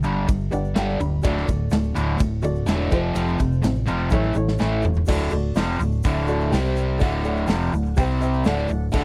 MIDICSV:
0, 0, Header, 1, 5, 480
1, 0, Start_track
1, 0, Tempo, 480384
1, 1244, Time_signature, 4, 2, 24, 8
1, 9035, End_track
2, 0, Start_track
2, 0, Title_t, "Upright piano"
2, 0, Program_c, 0, 0
2, 503, Note_on_c, 0, 67, 82
2, 515, Note_on_c, 0, 71, 75
2, 515, Note_on_c, 0, 78, 72
2, 525, Note_on_c, 0, 74, 91
2, 742, Note_off_c, 0, 78, 0
2, 759, Note_on_c, 0, 79, 78
2, 984, Note_off_c, 0, 79, 0
2, 1005, Note_on_c, 0, 83, 79
2, 1089, Note_off_c, 0, 67, 0
2, 1095, Note_off_c, 0, 71, 0
2, 1100, Note_off_c, 0, 74, 0
2, 1221, Note_on_c, 0, 66, 84
2, 1228, Note_off_c, 0, 83, 0
2, 1232, Note_on_c, 0, 69, 77
2, 1235, Note_on_c, 0, 74, 94
2, 2000, Note_off_c, 0, 66, 0
2, 2006, Note_off_c, 0, 69, 0
2, 2007, Note_off_c, 0, 74, 0
2, 2416, Note_on_c, 0, 66, 84
2, 2431, Note_on_c, 0, 69, 79
2, 2441, Note_on_c, 0, 74, 96
2, 2894, Note_off_c, 0, 69, 0
2, 2907, Note_on_c, 0, 65, 89
2, 2909, Note_on_c, 0, 69, 82
2, 2910, Note_off_c, 0, 66, 0
2, 2922, Note_off_c, 0, 74, 0
2, 2924, Note_on_c, 0, 72, 103
2, 3683, Note_off_c, 0, 65, 0
2, 3684, Note_off_c, 0, 69, 0
2, 3692, Note_off_c, 0, 72, 0
2, 4105, Note_on_c, 0, 64, 91
2, 4118, Note_on_c, 0, 69, 82
2, 4130, Note_on_c, 0, 73, 98
2, 4306, Note_off_c, 0, 64, 0
2, 4313, Note_off_c, 0, 69, 0
2, 4319, Note_off_c, 0, 73, 0
2, 4343, Note_on_c, 0, 64, 86
2, 4352, Note_on_c, 0, 69, 79
2, 4365, Note_on_c, 0, 73, 98
2, 4929, Note_off_c, 0, 64, 0
2, 4934, Note_off_c, 0, 69, 0
2, 4940, Note_off_c, 0, 73, 0
2, 5062, Note_on_c, 0, 66, 83
2, 5074, Note_on_c, 0, 69, 77
2, 5081, Note_on_c, 0, 74, 90
2, 5265, Note_off_c, 0, 66, 0
2, 5271, Note_off_c, 0, 69, 0
2, 5274, Note_off_c, 0, 74, 0
2, 5303, Note_on_c, 0, 66, 76
2, 5311, Note_on_c, 0, 69, 66
2, 5324, Note_on_c, 0, 74, 75
2, 6081, Note_off_c, 0, 66, 0
2, 6086, Note_off_c, 0, 69, 0
2, 6092, Note_off_c, 0, 74, 0
2, 6266, Note_on_c, 0, 66, 84
2, 6273, Note_on_c, 0, 69, 78
2, 6283, Note_on_c, 0, 74, 90
2, 6496, Note_on_c, 0, 67, 92
2, 6506, Note_on_c, 0, 72, 77
2, 6511, Note_on_c, 0, 79, 95
2, 6515, Note_off_c, 0, 66, 0
2, 6519, Note_off_c, 0, 69, 0
2, 6524, Note_off_c, 0, 74, 0
2, 6894, Note_off_c, 0, 67, 0
2, 6899, Note_off_c, 0, 72, 0
2, 6902, Note_off_c, 0, 79, 0
2, 6979, Note_on_c, 0, 69, 87
2, 6985, Note_on_c, 0, 74, 79
2, 6998, Note_on_c, 0, 78, 95
2, 7184, Note_off_c, 0, 69, 0
2, 7187, Note_off_c, 0, 74, 0
2, 7193, Note_off_c, 0, 78, 0
2, 7233, Note_on_c, 0, 69, 76
2, 7244, Note_on_c, 0, 74, 66
2, 7249, Note_on_c, 0, 78, 84
2, 7956, Note_on_c, 0, 67, 89
2, 7959, Note_off_c, 0, 69, 0
2, 7965, Note_off_c, 0, 74, 0
2, 7967, Note_off_c, 0, 78, 0
2, 7968, Note_on_c, 0, 72, 83
2, 7976, Note_on_c, 0, 79, 100
2, 8152, Note_off_c, 0, 67, 0
2, 8158, Note_off_c, 0, 72, 0
2, 8162, Note_off_c, 0, 79, 0
2, 8191, Note_on_c, 0, 67, 79
2, 8201, Note_on_c, 0, 72, 74
2, 8207, Note_on_c, 0, 76, 92
2, 8438, Note_off_c, 0, 67, 0
2, 8443, Note_off_c, 0, 72, 0
2, 8446, Note_off_c, 0, 76, 0
2, 8448, Note_on_c, 0, 69, 90
2, 8449, Note_on_c, 0, 74, 82
2, 8463, Note_on_c, 0, 78, 98
2, 8830, Note_off_c, 0, 69, 0
2, 8831, Note_off_c, 0, 74, 0
2, 8838, Note_off_c, 0, 78, 0
2, 8925, Note_on_c, 0, 69, 84
2, 8935, Note_on_c, 0, 74, 78
2, 8950, Note_on_c, 0, 78, 93
2, 9035, Note_off_c, 0, 69, 0
2, 9035, Note_off_c, 0, 74, 0
2, 9035, Note_off_c, 0, 78, 0
2, 9035, End_track
3, 0, Start_track
3, 0, Title_t, "Overdriven electric guitar"
3, 0, Program_c, 1, 29
3, 37, Note_on_c, 1, 43, 90
3, 44, Note_on_c, 1, 50, 101
3, 47, Note_on_c, 1, 55, 88
3, 264, Note_off_c, 1, 43, 0
3, 270, Note_off_c, 1, 50, 0
3, 271, Note_off_c, 1, 55, 0
3, 276, Note_on_c, 1, 43, 71
3, 284, Note_on_c, 1, 50, 72
3, 496, Note_off_c, 1, 43, 0
3, 500, Note_off_c, 1, 50, 0
3, 515, Note_on_c, 1, 43, 77
3, 520, Note_on_c, 1, 50, 84
3, 730, Note_off_c, 1, 43, 0
3, 738, Note_off_c, 1, 50, 0
3, 742, Note_on_c, 1, 43, 101
3, 753, Note_on_c, 1, 50, 99
3, 757, Note_on_c, 1, 55, 99
3, 978, Note_off_c, 1, 43, 0
3, 984, Note_off_c, 1, 50, 0
3, 986, Note_off_c, 1, 55, 0
3, 1002, Note_on_c, 1, 43, 71
3, 1007, Note_on_c, 1, 50, 78
3, 1219, Note_off_c, 1, 43, 0
3, 1221, Note_off_c, 1, 50, 0
3, 1245, Note_on_c, 1, 38, 89
3, 1250, Note_on_c, 1, 45, 86
3, 1255, Note_on_c, 1, 50, 97
3, 1461, Note_off_c, 1, 38, 0
3, 1465, Note_off_c, 1, 45, 0
3, 1473, Note_on_c, 1, 38, 73
3, 1475, Note_off_c, 1, 50, 0
3, 1477, Note_on_c, 1, 45, 79
3, 1694, Note_off_c, 1, 38, 0
3, 1696, Note_off_c, 1, 45, 0
3, 1714, Note_on_c, 1, 38, 70
3, 1721, Note_on_c, 1, 45, 80
3, 1932, Note_off_c, 1, 38, 0
3, 1938, Note_off_c, 1, 45, 0
3, 1944, Note_on_c, 1, 38, 93
3, 1951, Note_on_c, 1, 45, 99
3, 1958, Note_on_c, 1, 50, 106
3, 2179, Note_off_c, 1, 38, 0
3, 2183, Note_off_c, 1, 45, 0
3, 2186, Note_off_c, 1, 50, 0
3, 2199, Note_on_c, 1, 38, 71
3, 2209, Note_on_c, 1, 45, 77
3, 2417, Note_off_c, 1, 38, 0
3, 2422, Note_off_c, 1, 45, 0
3, 2434, Note_on_c, 1, 38, 82
3, 2445, Note_on_c, 1, 45, 92
3, 2655, Note_off_c, 1, 38, 0
3, 2660, Note_off_c, 1, 45, 0
3, 2675, Note_on_c, 1, 38, 106
3, 2680, Note_on_c, 1, 45, 91
3, 2688, Note_on_c, 1, 50, 100
3, 2905, Note_off_c, 1, 38, 0
3, 2907, Note_off_c, 1, 45, 0
3, 2911, Note_off_c, 1, 50, 0
3, 2927, Note_on_c, 1, 41, 84
3, 2930, Note_on_c, 1, 48, 91
3, 2934, Note_on_c, 1, 53, 101
3, 3128, Note_off_c, 1, 41, 0
3, 3137, Note_off_c, 1, 48, 0
3, 3140, Note_on_c, 1, 41, 88
3, 3141, Note_off_c, 1, 53, 0
3, 3149, Note_on_c, 1, 48, 83
3, 3153, Note_on_c, 1, 53, 89
3, 3368, Note_off_c, 1, 41, 0
3, 3373, Note_off_c, 1, 48, 0
3, 3380, Note_on_c, 1, 41, 76
3, 3383, Note_off_c, 1, 53, 0
3, 3385, Note_on_c, 1, 48, 85
3, 3604, Note_off_c, 1, 41, 0
3, 3610, Note_off_c, 1, 48, 0
3, 3616, Note_on_c, 1, 41, 75
3, 3621, Note_on_c, 1, 48, 79
3, 3842, Note_off_c, 1, 41, 0
3, 3848, Note_off_c, 1, 48, 0
3, 3854, Note_on_c, 1, 41, 90
3, 3863, Note_on_c, 1, 48, 97
3, 3867, Note_on_c, 1, 53, 99
3, 4094, Note_off_c, 1, 41, 0
3, 4099, Note_off_c, 1, 48, 0
3, 4101, Note_off_c, 1, 53, 0
3, 4109, Note_on_c, 1, 45, 88
3, 4110, Note_on_c, 1, 52, 93
3, 4117, Note_on_c, 1, 57, 100
3, 4335, Note_off_c, 1, 45, 0
3, 4337, Note_off_c, 1, 52, 0
3, 4346, Note_off_c, 1, 57, 0
3, 4347, Note_on_c, 1, 45, 79
3, 4349, Note_on_c, 1, 52, 90
3, 4571, Note_off_c, 1, 45, 0
3, 4572, Note_off_c, 1, 52, 0
3, 4586, Note_on_c, 1, 45, 100
3, 4594, Note_on_c, 1, 52, 95
3, 4598, Note_on_c, 1, 57, 111
3, 4820, Note_off_c, 1, 45, 0
3, 4824, Note_off_c, 1, 52, 0
3, 4826, Note_off_c, 1, 57, 0
3, 4844, Note_on_c, 1, 45, 65
3, 4845, Note_on_c, 1, 52, 77
3, 5060, Note_off_c, 1, 45, 0
3, 5060, Note_off_c, 1, 52, 0
3, 5075, Note_on_c, 1, 38, 81
3, 5082, Note_on_c, 1, 45, 83
3, 5085, Note_on_c, 1, 50, 89
3, 5309, Note_off_c, 1, 38, 0
3, 5314, Note_off_c, 1, 45, 0
3, 5317, Note_off_c, 1, 50, 0
3, 5321, Note_on_c, 1, 38, 67
3, 5326, Note_on_c, 1, 45, 69
3, 5514, Note_off_c, 1, 38, 0
3, 5517, Note_off_c, 1, 45, 0
3, 5559, Note_on_c, 1, 41, 86
3, 5564, Note_on_c, 1, 48, 85
3, 5568, Note_on_c, 1, 53, 96
3, 5794, Note_off_c, 1, 41, 0
3, 5797, Note_off_c, 1, 48, 0
3, 5799, Note_off_c, 1, 53, 0
3, 5801, Note_on_c, 1, 38, 58
3, 5805, Note_on_c, 1, 45, 67
3, 5994, Note_off_c, 1, 38, 0
3, 5996, Note_off_c, 1, 45, 0
3, 6037, Note_on_c, 1, 38, 83
3, 6043, Note_on_c, 1, 45, 83
3, 6046, Note_on_c, 1, 50, 94
3, 6513, Note_off_c, 1, 38, 0
3, 6516, Note_off_c, 1, 45, 0
3, 6518, Note_off_c, 1, 50, 0
3, 6522, Note_on_c, 1, 48, 96
3, 6529, Note_on_c, 1, 55, 104
3, 6530, Note_on_c, 1, 60, 100
3, 6988, Note_off_c, 1, 48, 0
3, 6992, Note_on_c, 1, 38, 81
3, 6997, Note_off_c, 1, 55, 0
3, 7000, Note_off_c, 1, 60, 0
3, 7000, Note_on_c, 1, 45, 88
3, 7009, Note_on_c, 1, 50, 99
3, 7461, Note_off_c, 1, 38, 0
3, 7465, Note_on_c, 1, 41, 86
3, 7466, Note_off_c, 1, 45, 0
3, 7470, Note_on_c, 1, 48, 81
3, 7473, Note_off_c, 1, 50, 0
3, 7477, Note_on_c, 1, 53, 95
3, 7708, Note_off_c, 1, 41, 0
3, 7710, Note_off_c, 1, 48, 0
3, 7713, Note_off_c, 1, 53, 0
3, 7724, Note_on_c, 1, 38, 60
3, 7734, Note_on_c, 1, 45, 69
3, 7916, Note_off_c, 1, 38, 0
3, 7921, Note_off_c, 1, 45, 0
3, 7966, Note_on_c, 1, 48, 88
3, 7975, Note_on_c, 1, 55, 83
3, 7978, Note_on_c, 1, 60, 96
3, 8438, Note_off_c, 1, 48, 0
3, 8443, Note_off_c, 1, 55, 0
3, 8444, Note_off_c, 1, 60, 0
3, 8445, Note_on_c, 1, 38, 95
3, 8452, Note_on_c, 1, 45, 111
3, 8459, Note_on_c, 1, 50, 105
3, 8678, Note_off_c, 1, 38, 0
3, 8681, Note_off_c, 1, 45, 0
3, 8685, Note_off_c, 1, 50, 0
3, 8690, Note_on_c, 1, 38, 61
3, 8700, Note_on_c, 1, 45, 69
3, 8879, Note_off_c, 1, 38, 0
3, 8884, Note_off_c, 1, 45, 0
3, 8929, Note_on_c, 1, 38, 88
3, 8936, Note_on_c, 1, 45, 88
3, 8939, Note_on_c, 1, 50, 105
3, 9035, Note_off_c, 1, 38, 0
3, 9035, Note_off_c, 1, 45, 0
3, 9035, Note_off_c, 1, 50, 0
3, 9035, End_track
4, 0, Start_track
4, 0, Title_t, "Fingered electric bass"
4, 0, Program_c, 2, 33
4, 45, Note_on_c, 2, 31, 88
4, 264, Note_off_c, 2, 31, 0
4, 287, Note_on_c, 2, 31, 95
4, 505, Note_off_c, 2, 31, 0
4, 525, Note_on_c, 2, 31, 81
4, 744, Note_off_c, 2, 31, 0
4, 763, Note_on_c, 2, 31, 96
4, 982, Note_off_c, 2, 31, 0
4, 1000, Note_on_c, 2, 26, 90
4, 1221, Note_off_c, 2, 26, 0
4, 1245, Note_on_c, 2, 26, 93
4, 1464, Note_off_c, 2, 26, 0
4, 1486, Note_on_c, 2, 26, 89
4, 1704, Note_off_c, 2, 26, 0
4, 1714, Note_on_c, 2, 26, 93
4, 1937, Note_off_c, 2, 26, 0
4, 1960, Note_on_c, 2, 26, 93
4, 2180, Note_off_c, 2, 26, 0
4, 2200, Note_on_c, 2, 26, 97
4, 2642, Note_off_c, 2, 26, 0
4, 2662, Note_on_c, 2, 28, 93
4, 2891, Note_off_c, 2, 28, 0
4, 2922, Note_on_c, 2, 29, 90
4, 3142, Note_off_c, 2, 29, 0
4, 3146, Note_on_c, 2, 29, 92
4, 3373, Note_off_c, 2, 29, 0
4, 3394, Note_on_c, 2, 29, 89
4, 3617, Note_off_c, 2, 29, 0
4, 3630, Note_on_c, 2, 33, 94
4, 3855, Note_off_c, 2, 33, 0
4, 3874, Note_on_c, 2, 29, 95
4, 4097, Note_off_c, 2, 29, 0
4, 4117, Note_on_c, 2, 33, 92
4, 4339, Note_off_c, 2, 33, 0
4, 4352, Note_on_c, 2, 33, 88
4, 4576, Note_off_c, 2, 33, 0
4, 4604, Note_on_c, 2, 33, 90
4, 4823, Note_off_c, 2, 33, 0
4, 4843, Note_on_c, 2, 28, 89
4, 5063, Note_off_c, 2, 28, 0
4, 5077, Note_on_c, 2, 26, 88
4, 5303, Note_off_c, 2, 26, 0
4, 5318, Note_on_c, 2, 26, 79
4, 5544, Note_off_c, 2, 26, 0
4, 5555, Note_on_c, 2, 29, 90
4, 5782, Note_off_c, 2, 29, 0
4, 5792, Note_on_c, 2, 26, 80
4, 6021, Note_off_c, 2, 26, 0
4, 6043, Note_on_c, 2, 26, 93
4, 6490, Note_off_c, 2, 26, 0
4, 6518, Note_on_c, 2, 36, 93
4, 6967, Note_off_c, 2, 36, 0
4, 7008, Note_on_c, 2, 26, 96
4, 7453, Note_off_c, 2, 26, 0
4, 7480, Note_on_c, 2, 29, 98
4, 7706, Note_off_c, 2, 29, 0
4, 7727, Note_on_c, 2, 26, 84
4, 7949, Note_off_c, 2, 26, 0
4, 7972, Note_on_c, 2, 36, 96
4, 8415, Note_off_c, 2, 36, 0
4, 8451, Note_on_c, 2, 26, 99
4, 8671, Note_off_c, 2, 26, 0
4, 8693, Note_on_c, 2, 26, 82
4, 8912, Note_off_c, 2, 26, 0
4, 8927, Note_on_c, 2, 26, 92
4, 9035, Note_off_c, 2, 26, 0
4, 9035, End_track
5, 0, Start_track
5, 0, Title_t, "Drums"
5, 30, Note_on_c, 9, 82, 73
5, 44, Note_on_c, 9, 51, 66
5, 130, Note_off_c, 9, 82, 0
5, 143, Note_off_c, 9, 51, 0
5, 285, Note_on_c, 9, 82, 88
5, 286, Note_on_c, 9, 36, 111
5, 286, Note_on_c, 9, 51, 88
5, 385, Note_off_c, 9, 82, 0
5, 386, Note_off_c, 9, 36, 0
5, 386, Note_off_c, 9, 51, 0
5, 402, Note_on_c, 9, 82, 25
5, 501, Note_off_c, 9, 82, 0
5, 518, Note_on_c, 9, 82, 66
5, 527, Note_on_c, 9, 51, 65
5, 618, Note_off_c, 9, 82, 0
5, 627, Note_off_c, 9, 51, 0
5, 644, Note_on_c, 9, 82, 26
5, 744, Note_off_c, 9, 82, 0
5, 757, Note_on_c, 9, 51, 83
5, 760, Note_on_c, 9, 38, 104
5, 765, Note_on_c, 9, 82, 81
5, 857, Note_off_c, 9, 51, 0
5, 860, Note_off_c, 9, 38, 0
5, 865, Note_off_c, 9, 82, 0
5, 999, Note_on_c, 9, 82, 62
5, 1005, Note_on_c, 9, 51, 69
5, 1099, Note_off_c, 9, 82, 0
5, 1105, Note_off_c, 9, 51, 0
5, 1226, Note_on_c, 9, 82, 85
5, 1245, Note_on_c, 9, 36, 112
5, 1245, Note_on_c, 9, 51, 99
5, 1326, Note_off_c, 9, 82, 0
5, 1345, Note_off_c, 9, 36, 0
5, 1345, Note_off_c, 9, 51, 0
5, 1371, Note_on_c, 9, 38, 31
5, 1471, Note_off_c, 9, 38, 0
5, 1474, Note_on_c, 9, 82, 71
5, 1485, Note_on_c, 9, 36, 80
5, 1486, Note_on_c, 9, 51, 70
5, 1574, Note_off_c, 9, 82, 0
5, 1585, Note_off_c, 9, 36, 0
5, 1586, Note_off_c, 9, 51, 0
5, 1703, Note_on_c, 9, 82, 95
5, 1723, Note_on_c, 9, 51, 100
5, 1726, Note_on_c, 9, 38, 103
5, 1803, Note_off_c, 9, 82, 0
5, 1823, Note_off_c, 9, 51, 0
5, 1826, Note_off_c, 9, 38, 0
5, 1829, Note_on_c, 9, 82, 26
5, 1929, Note_off_c, 9, 82, 0
5, 1956, Note_on_c, 9, 82, 70
5, 1960, Note_on_c, 9, 51, 72
5, 2056, Note_off_c, 9, 82, 0
5, 2060, Note_off_c, 9, 51, 0
5, 2183, Note_on_c, 9, 82, 94
5, 2200, Note_on_c, 9, 51, 98
5, 2202, Note_on_c, 9, 36, 108
5, 2283, Note_off_c, 9, 82, 0
5, 2300, Note_off_c, 9, 51, 0
5, 2301, Note_off_c, 9, 36, 0
5, 2421, Note_on_c, 9, 82, 70
5, 2441, Note_on_c, 9, 51, 69
5, 2521, Note_off_c, 9, 82, 0
5, 2541, Note_off_c, 9, 51, 0
5, 2548, Note_on_c, 9, 82, 26
5, 2648, Note_off_c, 9, 82, 0
5, 2664, Note_on_c, 9, 82, 86
5, 2682, Note_on_c, 9, 51, 86
5, 2685, Note_on_c, 9, 38, 103
5, 2764, Note_off_c, 9, 82, 0
5, 2782, Note_off_c, 9, 51, 0
5, 2785, Note_off_c, 9, 38, 0
5, 2803, Note_on_c, 9, 38, 31
5, 2903, Note_off_c, 9, 38, 0
5, 2904, Note_on_c, 9, 82, 65
5, 2919, Note_on_c, 9, 36, 106
5, 2919, Note_on_c, 9, 51, 67
5, 3004, Note_off_c, 9, 82, 0
5, 3019, Note_off_c, 9, 36, 0
5, 3019, Note_off_c, 9, 51, 0
5, 3149, Note_on_c, 9, 82, 97
5, 3155, Note_on_c, 9, 51, 97
5, 3249, Note_off_c, 9, 82, 0
5, 3255, Note_off_c, 9, 51, 0
5, 3273, Note_on_c, 9, 82, 29
5, 3373, Note_off_c, 9, 82, 0
5, 3385, Note_on_c, 9, 82, 73
5, 3397, Note_on_c, 9, 36, 87
5, 3399, Note_on_c, 9, 51, 69
5, 3485, Note_off_c, 9, 82, 0
5, 3497, Note_off_c, 9, 36, 0
5, 3499, Note_off_c, 9, 51, 0
5, 3517, Note_on_c, 9, 82, 29
5, 3617, Note_off_c, 9, 82, 0
5, 3629, Note_on_c, 9, 82, 99
5, 3637, Note_on_c, 9, 51, 95
5, 3640, Note_on_c, 9, 38, 113
5, 3729, Note_off_c, 9, 82, 0
5, 3737, Note_off_c, 9, 51, 0
5, 3740, Note_off_c, 9, 38, 0
5, 3749, Note_on_c, 9, 82, 26
5, 3849, Note_off_c, 9, 82, 0
5, 3864, Note_on_c, 9, 82, 70
5, 3877, Note_on_c, 9, 51, 68
5, 3964, Note_off_c, 9, 82, 0
5, 3977, Note_off_c, 9, 51, 0
5, 4098, Note_on_c, 9, 82, 90
5, 4117, Note_on_c, 9, 36, 108
5, 4118, Note_on_c, 9, 48, 63
5, 4198, Note_off_c, 9, 82, 0
5, 4217, Note_off_c, 9, 36, 0
5, 4218, Note_off_c, 9, 48, 0
5, 4223, Note_on_c, 9, 82, 25
5, 4236, Note_on_c, 9, 48, 59
5, 4323, Note_off_c, 9, 82, 0
5, 4335, Note_on_c, 9, 82, 70
5, 4336, Note_off_c, 9, 48, 0
5, 4435, Note_off_c, 9, 82, 0
5, 4478, Note_on_c, 9, 38, 69
5, 4577, Note_off_c, 9, 38, 0
5, 4577, Note_on_c, 9, 82, 80
5, 4601, Note_on_c, 9, 38, 78
5, 4677, Note_off_c, 9, 82, 0
5, 4701, Note_off_c, 9, 38, 0
5, 4816, Note_on_c, 9, 82, 64
5, 4844, Note_on_c, 9, 43, 96
5, 4916, Note_off_c, 9, 82, 0
5, 4936, Note_on_c, 9, 82, 27
5, 4944, Note_off_c, 9, 43, 0
5, 4963, Note_on_c, 9, 43, 87
5, 5036, Note_off_c, 9, 82, 0
5, 5056, Note_on_c, 9, 82, 115
5, 5063, Note_off_c, 9, 43, 0
5, 5081, Note_on_c, 9, 36, 107
5, 5081, Note_on_c, 9, 49, 124
5, 5156, Note_off_c, 9, 82, 0
5, 5181, Note_off_c, 9, 36, 0
5, 5181, Note_off_c, 9, 49, 0
5, 5298, Note_on_c, 9, 82, 84
5, 5397, Note_off_c, 9, 82, 0
5, 5547, Note_on_c, 9, 82, 105
5, 5562, Note_on_c, 9, 46, 65
5, 5565, Note_on_c, 9, 38, 110
5, 5647, Note_off_c, 9, 82, 0
5, 5662, Note_off_c, 9, 46, 0
5, 5665, Note_off_c, 9, 38, 0
5, 5792, Note_on_c, 9, 82, 73
5, 5892, Note_off_c, 9, 82, 0
5, 5917, Note_on_c, 9, 82, 28
5, 6017, Note_off_c, 9, 82, 0
5, 6027, Note_on_c, 9, 82, 104
5, 6044, Note_on_c, 9, 36, 109
5, 6045, Note_on_c, 9, 46, 63
5, 6127, Note_off_c, 9, 82, 0
5, 6144, Note_off_c, 9, 36, 0
5, 6145, Note_off_c, 9, 46, 0
5, 6268, Note_on_c, 9, 82, 73
5, 6368, Note_off_c, 9, 82, 0
5, 6400, Note_on_c, 9, 82, 28
5, 6500, Note_off_c, 9, 82, 0
5, 6520, Note_on_c, 9, 82, 93
5, 6526, Note_on_c, 9, 46, 56
5, 6529, Note_on_c, 9, 38, 97
5, 6620, Note_off_c, 9, 82, 0
5, 6626, Note_off_c, 9, 46, 0
5, 6629, Note_off_c, 9, 38, 0
5, 6644, Note_on_c, 9, 82, 28
5, 6744, Note_off_c, 9, 82, 0
5, 6758, Note_on_c, 9, 82, 68
5, 6858, Note_off_c, 9, 82, 0
5, 6991, Note_on_c, 9, 82, 93
5, 7009, Note_on_c, 9, 36, 106
5, 7013, Note_on_c, 9, 46, 60
5, 7090, Note_off_c, 9, 82, 0
5, 7109, Note_off_c, 9, 36, 0
5, 7113, Note_off_c, 9, 46, 0
5, 7236, Note_on_c, 9, 82, 73
5, 7336, Note_off_c, 9, 82, 0
5, 7359, Note_on_c, 9, 82, 28
5, 7459, Note_off_c, 9, 82, 0
5, 7467, Note_on_c, 9, 82, 96
5, 7487, Note_on_c, 9, 46, 59
5, 7490, Note_on_c, 9, 38, 105
5, 7567, Note_off_c, 9, 82, 0
5, 7587, Note_off_c, 9, 46, 0
5, 7590, Note_off_c, 9, 38, 0
5, 7724, Note_on_c, 9, 82, 76
5, 7824, Note_off_c, 9, 82, 0
5, 7848, Note_on_c, 9, 82, 26
5, 7948, Note_off_c, 9, 82, 0
5, 7958, Note_on_c, 9, 82, 91
5, 7968, Note_on_c, 9, 46, 55
5, 7971, Note_on_c, 9, 36, 106
5, 8058, Note_off_c, 9, 82, 0
5, 8068, Note_off_c, 9, 46, 0
5, 8071, Note_off_c, 9, 36, 0
5, 8206, Note_on_c, 9, 82, 75
5, 8306, Note_off_c, 9, 82, 0
5, 8324, Note_on_c, 9, 82, 27
5, 8424, Note_off_c, 9, 82, 0
5, 8435, Note_on_c, 9, 82, 89
5, 8451, Note_on_c, 9, 46, 54
5, 8454, Note_on_c, 9, 38, 103
5, 8535, Note_off_c, 9, 82, 0
5, 8551, Note_off_c, 9, 46, 0
5, 8554, Note_off_c, 9, 38, 0
5, 8556, Note_on_c, 9, 82, 27
5, 8656, Note_off_c, 9, 82, 0
5, 8672, Note_on_c, 9, 82, 70
5, 8772, Note_off_c, 9, 82, 0
5, 8910, Note_on_c, 9, 82, 98
5, 8928, Note_on_c, 9, 49, 99
5, 8930, Note_on_c, 9, 36, 99
5, 9010, Note_off_c, 9, 82, 0
5, 9028, Note_off_c, 9, 49, 0
5, 9030, Note_off_c, 9, 36, 0
5, 9035, End_track
0, 0, End_of_file